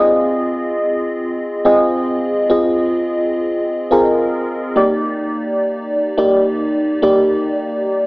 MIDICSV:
0, 0, Header, 1, 2, 480
1, 0, Start_track
1, 0, Tempo, 566038
1, 200, Time_signature, 4, 2, 24, 8
1, 6841, End_track
2, 0, Start_track
2, 0, Title_t, "FM electric piano"
2, 0, Program_c, 0, 5
2, 0, Note_on_c, 0, 60, 78
2, 0, Note_on_c, 0, 65, 70
2, 0, Note_on_c, 0, 68, 77
2, 0, Note_on_c, 0, 75, 89
2, 119, Control_c, 0, 64, 127
2, 841, Note_off_c, 0, 60, 0
2, 843, Note_off_c, 0, 65, 0
2, 844, Note_off_c, 0, 68, 0
2, 846, Note_off_c, 0, 75, 0
2, 1397, Note_on_c, 0, 60, 77
2, 1401, Note_on_c, 0, 65, 68
2, 1404, Note_on_c, 0, 68, 70
2, 1406, Note_on_c, 0, 75, 82
2, 2060, Note_off_c, 0, 60, 0
2, 2062, Note_off_c, 0, 65, 0
2, 2063, Note_off_c, 0, 68, 0
2, 2065, Note_off_c, 0, 75, 0
2, 2117, Note_on_c, 0, 60, 77
2, 2121, Note_on_c, 0, 65, 68
2, 2124, Note_on_c, 0, 68, 69
2, 2129, Note_on_c, 0, 75, 84
2, 3000, Note_off_c, 0, 60, 0
2, 3003, Note_off_c, 0, 65, 0
2, 3004, Note_off_c, 0, 68, 0
2, 3006, Note_off_c, 0, 75, 0
2, 3314, Note_on_c, 0, 60, 73
2, 3318, Note_on_c, 0, 65, 66
2, 3322, Note_on_c, 0, 68, 72
2, 3325, Note_on_c, 0, 70, 82
2, 3978, Note_off_c, 0, 60, 0
2, 3981, Note_off_c, 0, 65, 0
2, 3983, Note_off_c, 0, 68, 0
2, 3984, Note_off_c, 0, 70, 0
2, 4035, Note_on_c, 0, 58, 75
2, 4037, Note_on_c, 0, 63, 69
2, 4040, Note_on_c, 0, 67, 68
2, 4045, Note_on_c, 0, 74, 84
2, 4050, Control_c, 0, 64, 0
2, 4221, Control_c, 0, 64, 127
2, 4919, Note_off_c, 0, 58, 0
2, 4920, Note_off_c, 0, 63, 0
2, 4922, Note_off_c, 0, 67, 0
2, 4924, Note_off_c, 0, 74, 0
2, 5237, Note_on_c, 0, 58, 78
2, 5238, Note_on_c, 0, 63, 70
2, 5245, Note_on_c, 0, 67, 71
2, 5245, Note_on_c, 0, 74, 78
2, 5900, Note_off_c, 0, 58, 0
2, 5901, Note_off_c, 0, 63, 0
2, 5904, Note_off_c, 0, 67, 0
2, 5904, Note_off_c, 0, 74, 0
2, 5955, Note_on_c, 0, 58, 77
2, 5958, Note_on_c, 0, 63, 73
2, 5960, Note_on_c, 0, 67, 72
2, 5964, Note_on_c, 0, 74, 86
2, 6839, Note_off_c, 0, 58, 0
2, 6841, Note_off_c, 0, 63, 0
2, 6841, Note_off_c, 0, 67, 0
2, 6841, Note_off_c, 0, 74, 0
2, 6841, End_track
0, 0, End_of_file